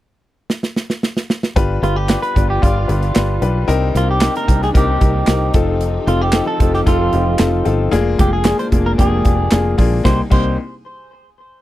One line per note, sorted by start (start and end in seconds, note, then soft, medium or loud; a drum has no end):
0.50 snare medium
0.63 snare medium
0.76 snare medium
0.90 snare medium
1.03 snare medium
1.17 snare medium
1.30 snare medium
1.43 snare medium
1.56 1.78 G1 medium
1.56 2.32 G2 medium
1.56 5.50 G3 medium
1.56 3.67 B3 medium
1.56 1.76 D4 loud
1.56 1.76 F4 medium
1.56 3.67 F4 medium
1.56 1.76 G4 medium
1.56 1.76 B4 loud
1.56 kick loud
1.56 closed hi-hat medium
1.82 2.15 G1 medium
1.82 2.02 D4 medium
1.82 2.02 F4 medium
1.82 1.96 F4 medium
1.82 2.02 G4 medium
1.82 2.02 B4 medium
1.82 closed hi-hat medium
1.96 2.22 G4 medium
2.09 2.28 D4 medium
2.09 2.28 F4 medium
2.09 2.29 G4 medium
2.09 2.29 B4 medium
2.09 snare medium
2.09 clap medium
2.09 closed hi-hat medium
2.22 2.50 B4 medium
2.22 closed hi-hat medium
2.35 2.58 G1 medium
2.35 2.55 D4 medium
2.35 2.55 F4 medium
2.35 2.55 G4 medium
2.35 2.55 D5 medium
2.35 kick medium
2.35 closed hi-hat medium
2.50 2.62 G4 medium
2.62 2.85 G1 medium
2.62 2.82 D4 medium
2.62 2.82 F4 medium
2.62 3.42 F4 medium
2.62 2.82 G4 medium
2.62 2.82 D5 medium
2.62 kick medium
2.62 closed hi-hat medium
2.88 3.11 G1 medium
2.88 3.08 D4 medium
2.88 3.08 F4 soft
2.88 3.08 G4 medium
2.88 3.08 B4 medium
2.88 closed hi-hat medium
3.03 closed hi-hat soft
3.15 3.38 G1 medium
3.15 3.35 D4 medium
3.15 3.35 F4 medium
3.15 3.35 G4 medium
3.15 3.35 B4 medium
3.15 snare medium
3.15 clap medium
3.15 closed hi-hat medium
3.42 3.64 B1 medium
3.42 3.61 D4 medium
3.42 3.61 F4 medium
3.42 3.61 G4 medium
3.42 3.61 B4 medium
3.42 closed hi-hat medium
3.68 3.90 C2 medium
3.68 4.44 C3 medium
3.68 5.53 C3 medium
3.68 5.53 A#3 medium
3.68 3.87 C4 loud
3.68 5.53 D4 medium
3.68 3.88 D#4 medium
3.68 7.89 D#4 medium
3.68 3.88 G4 medium
3.68 3.88 A#4 loud
3.68 closed hi-hat medium
3.95 4.28 C2 medium
3.95 4.14 C4 medium
3.95 4.14 D#4 medium
3.95 4.09 F4 medium
3.95 4.14 G4 medium
3.95 4.14 A#4 medium
3.95 closed hi-hat medium
4.11 4.34 G4 medium
4.21 4.41 C4 medium
4.21 4.41 D#4 medium
4.21 4.41 G4 medium
4.21 4.41 A#4 medium
4.21 snare loud
4.21 clap medium
4.21 closed hi-hat medium
4.36 4.63 A#4 medium
4.36 closed hi-hat medium
4.47 4.70 C2 medium
4.47 4.67 C4 medium
4.47 4.67 D#4 medium
4.47 4.67 G4 medium
4.47 4.67 C5 medium
4.47 kick medium
4.47 closed hi-hat medium
4.62 4.69 G#4 medium
4.62 snare soft
4.74 4.97 C2 medium
4.74 4.94 C4 medium
4.74 4.94 D#4 medium
4.74 4.94 G4 medium
4.74 5.51 G4 medium
4.74 4.94 A#4 medium
4.74 kick medium
4.74 closed hi-hat medium
5.01 5.23 C2 medium
5.01 5.20 C4 medium
5.01 5.20 D#4 medium
5.01 5.20 G4 medium
5.01 5.20 A#4 medium
5.01 kick medium
5.01 closed hi-hat medium
5.27 5.49 C2 medium
5.27 5.47 C4 medium
5.27 5.47 D#4 medium
5.27 5.47 G4 medium
5.27 5.47 A#4 medium
5.27 snare loud
5.27 clap medium
5.27 closed hi-hat medium
5.54 5.98 F1 medium
5.54 7.91 F3 medium
5.54 5.97 C4 medium
5.54 7.91 C4 medium
5.54 5.97 D#4 medium
5.54 5.97 F4 medium
5.54 7.91 G4 medium
5.54 5.97 A4 medium
5.54 7.91 A4 medium
5.54 kick loud
5.54 closed hi-hat medium
5.81 closed hi-hat medium
6.07 6.40 F1 medium
6.07 6.27 C4 medium
6.07 6.27 D#4 medium
6.07 6.27 F4 medium
6.07 6.21 F4 medium
6.07 6.27 A4 medium
6.07 closed hi-hat medium
6.21 6.47 G4 medium
6.32 6.53 C4 medium
6.32 6.53 D#4 medium
6.32 6.53 F4 medium
6.32 6.53 A4 medium
6.32 snare loud
6.32 clap medium
6.32 closed hi-hat medium
6.47 6.72 A4 medium
6.60 6.82 F1 medium
6.60 6.80 C4 medium
6.60 6.79 D#4 medium
6.60 6.79 F4 medium
6.60 6.79 A4 medium
6.60 kick medium
6.60 closed hi-hat medium
6.74 6.80 G4 medium
6.74 snare soft
6.86 7.08 F1 medium
6.86 7.06 C4 medium
6.86 7.06 D#4 medium
6.86 7.06 F4 medium
6.86 7.67 F4 medium
6.86 7.06 A4 medium
6.86 kick medium
6.86 closed hi-hat medium
7.13 7.35 F1 medium
7.13 7.33 C4 medium
7.13 7.32 D#4 medium
7.13 7.33 F4 medium
7.13 7.33 G4 medium
7.13 closed hi-hat medium
7.39 7.61 F1 medium
7.39 7.59 C4 medium
7.39 7.59 D#4 medium
7.39 7.59 F4 medium
7.39 7.59 A4 medium
7.39 snare loud
7.39 clap medium
7.39 closed hi-hat medium
7.65 7.88 G1 medium
7.65 7.85 C4 medium
7.65 7.85 D#4 medium
7.65 7.85 F4 medium
7.65 7.85 A4 medium
7.65 closed hi-hat medium
7.91 8.14 F1 loud
7.91 10.03 G#3 medium
7.91 8.12 A#3 loud
7.91 10.03 A#3 medium
7.91 8.12 D4 loud
7.91 10.03 D4 medium
7.91 8.12 F4 loud
7.91 8.12 G#4 loud
7.91 closed hi-hat medium
8.18 8.52 F1 loud
8.18 8.38 A#3 medium
8.18 8.38 D4 medium
8.18 8.38 F4 medium
8.18 8.33 G4 medium
8.18 8.38 G#4 medium
8.18 kick medium
8.18 closed hi-hat medium
8.33 8.59 G#4 medium
8.44 8.65 A#3 medium
8.44 8.65 D4 medium
8.44 8.65 F4 medium
8.44 8.65 G#4 medium
8.44 snare loud
8.44 clap medium
8.44 closed hi-hat medium
8.59 8.66 C5 medium
8.59 closed hi-hat medium
8.72 8.94 F1 loud
8.72 8.92 A#3 medium
8.72 8.92 D4 medium
8.72 8.92 F4 medium
8.72 8.92 G#4 medium
8.72 kick medium
8.72 closed hi-hat medium
8.86 8.91 A#4 medium
8.98 9.21 F1 medium
8.98 9.18 A#3 medium
8.98 9.18 D4 medium
8.98 9.18 F4 medium
8.98 9.18 G4 medium
8.98 9.75 G#4 medium
8.98 kick medium
8.98 closed hi-hat medium
9.24 9.47 F1 medium
9.24 9.44 A#3 medium
9.24 9.44 D4 medium
9.24 9.44 F4 medium
9.24 9.44 G4 medium
9.24 kick medium
9.24 closed hi-hat medium
9.51 9.74 F1 medium
9.51 9.71 A#3 medium
9.51 9.71 D4 medium
9.51 9.71 F4 medium
9.51 9.71 G#4 medium
9.51 snare loud
9.51 clap medium
9.51 closed hi-hat medium
9.78 10.00 A#1 medium
9.78 9.98 A#3 medium
9.78 9.98 D4 medium
9.78 9.98 F4 medium
9.78 9.98 G#4 medium
9.78 kick medium
9.78 open hi-hat medium
10.04 10.20 C2 medium
10.04 10.29 C3 medium
10.04 10.30 G3 medium
10.04 10.20 A#3 medium
10.04 10.30 A#3 medium
10.04 10.19 C4 medium
10.04 10.29 D4 medium
10.04 10.29 D#4 medium
10.04 10.20 D#4 medium
10.04 10.20 G4 medium
10.04 10.20 C5 medium
10.04 kick loud
10.04 snare medium
10.30 10.56 C2 medium
10.30 10.56 C2 loud
10.30 10.56 A#3 medium
10.30 10.56 C4 medium
10.30 10.56 D#4 medium
10.30 10.56 G4 medium
10.30 10.57 C5 medium
10.30 kick loud
10.30 crash medium